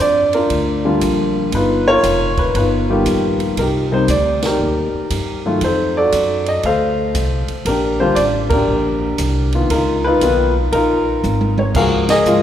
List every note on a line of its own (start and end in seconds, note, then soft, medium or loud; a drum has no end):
0.00 0.48 F2 medium
0.00 0.34 D4 medium
0.00 0.34 F4 medium
0.00 0.35 D5 medium
0.33 1.32 D4 medium
0.33 0.84 F4 medium
0.33 1.32 A#4 medium
0.33 ride soft
0.50 1.00 D2 medium
0.50 kick soft
0.50 ride medium
0.85 1.49 D3 medium
0.85 1.49 G3 medium
0.85 1.49 A#3 medium
0.85 1.50 F4 medium
1.01 1.51 A#1 medium
1.01 kick soft
1.01 hi-hat pedal medium
1.01 ride medium
1.52 2.02 G1 medium
1.52 2.52 D#4 medium
1.52 1.85 B4 medium
1.52 kick soft
1.52 ride medium
1.56 1.87 F4 medium
1.88 2.57 F4 medium
1.88 2.86 A#4 medium
1.88 2.40 C#5 loud
2.03 2.53 F1 medium
2.03 kick soft
2.03 hi-hat pedal medium
2.03 ride medium
2.37 2.54 B4 medium
2.37 kick medium
2.37 ride soft
2.54 3.04 G1 medium
2.54 2.89 D#4 medium
2.54 2.89 F4 medium
2.54 2.63 B4 medium
2.54 kick soft
2.54 ride medium
2.90 3.54 D#3 medium
2.90 3.54 G3 medium
2.90 3.55 A#3 soft
2.90 3.55 B3 soft
2.90 3.54 D#4 medium
2.90 3.54 F4 medium
2.90 3.37 G4 medium
3.06 3.55 A#1 medium
3.06 kick soft
3.06 hi-hat pedal medium
3.06 ride medium
3.40 ride soft
3.57 4.06 C2 medium
3.57 3.91 D#4 medium
3.57 4.45 G4 medium
3.57 3.66 A#4 medium
3.57 kick soft
3.57 ride medium
3.92 4.07 C3 medium
3.92 4.07 G3 medium
3.92 4.07 A#3 medium
3.92 4.07 D#4 medium
3.92 4.10 C5 medium
4.08 4.58 D2 medium
4.08 4.41 D5 medium
4.08 kick soft
4.08 hi-hat pedal medium
4.08 ride medium
4.42 5.42 A#4 medium
4.42 snare medium
4.42 ride medium
4.47 5.42 D#4 medium
4.47 5.43 G4 medium
4.60 4.91 D#2 medium
4.94 muted upright bass stroke soft
5.10 5.60 G2 medium
5.10 kick soft
5.10 hi-hat pedal medium
5.10 ride medium
5.46 5.60 D#3 medium
5.46 5.60 F#3 medium
5.46 5.61 A3 medium
5.46 5.61 F4 medium
5.61 6.11 F2 medium
5.61 5.98 C5 medium
5.61 kick soft
5.61 ride medium
5.66 6.62 D#4 medium
5.66 5.97 A4 medium
5.97 6.95 F#4 medium
5.97 6.64 A4 medium
5.97 6.49 D5 medium
6.12 6.62 F#2 medium
6.12 kick soft
6.12 hi-hat pedal medium
6.12 ride medium
6.46 6.63 D#5 medium
6.46 ride soft
6.63 7.13 D2 medium
6.63 7.63 A4 medium
6.63 7.63 C5 medium
6.63 7.46 F5 medium
6.63 kick soft
6.63 ride soft
7.15 7.46 C2 medium
7.15 kick soft
7.15 hi-hat pedal medium
7.15 ride medium
7.48 muted upright bass stroke soft
7.48 ride soft
7.65 8.15 A#1 medium
7.65 8.51 D4 medium
7.65 8.51 G4 medium
7.65 7.98 A#4 medium
7.65 kick soft
7.65 ride medium
8.00 8.16 D3 medium
8.00 8.15 G3 medium
8.00 8.16 A#3 medium
8.00 8.16 F4 medium
8.00 8.17 C5 medium
8.15 8.66 A1 medium
8.15 8.23 D5 medium
8.15 kick soft
8.15 hi-hat pedal medium
8.15 ride medium
8.50 9.50 D4 medium
8.50 9.50 G4 medium
8.50 9.48 A#4 medium
8.50 kick medium
8.50 ride medium
8.68 9.17 A#1 medium
9.18 9.68 C2 medium
9.18 kick soft
9.18 hi-hat pedal medium
9.18 ride medium
9.52 9.69 D#3 medium
9.52 9.69 A#3 soft
9.52 9.69 B3 medium
9.52 9.69 F4 medium
9.52 ride soft
9.70 10.19 C#2 medium
9.70 10.05 D#4 medium
9.70 10.05 F4 medium
9.70 10.05 A#4 medium
9.70 kick soft
9.70 ride medium
10.04 10.73 D#4 medium
10.04 10.21 F4 medium
10.04 10.52 B4 loud
10.21 10.70 B1 medium
10.21 10.52 D#3 medium
10.21 10.52 A#3 medium
10.21 10.52 B3 medium
10.21 10.52 F4 medium
10.21 kick soft
10.21 hi-hat pedal medium
10.21 ride medium
10.72 11.22 A#1 medium
10.72 11.71 D#4 medium
10.72 11.72 F4 medium
10.72 11.53 A#4 medium
10.72 kick soft
10.72 ride medium
11.23 11.73 G#1 medium
11.23 hi-hat pedal medium
11.23 high tom soft
11.41 high tom medium
11.58 11.64 C#5 medium
11.58 high tom medium
11.74 12.24 C#2 medium
11.74 12.05 F3 medium
11.74 12.05 G#3 medium
11.74 12.06 A#3 medium
11.74 12.06 F#4 medium
11.74 12.10 G#4 medium
11.74 12.10 A#4 medium
11.74 11.84 F5 medium
11.74 kick medium
11.74 crash medium
12.09 12.43 G#4 medium
12.09 12.43 A#4 medium
12.09 12.43 D#5 loud
12.09 snare medium
12.09 ride medium
12.25 12.43 G#2 medium
12.25 12.43 F3 medium
12.25 12.43 G#3 medium
12.25 12.43 A#3 medium
12.25 12.43 F4 medium
12.25 hi-hat pedal medium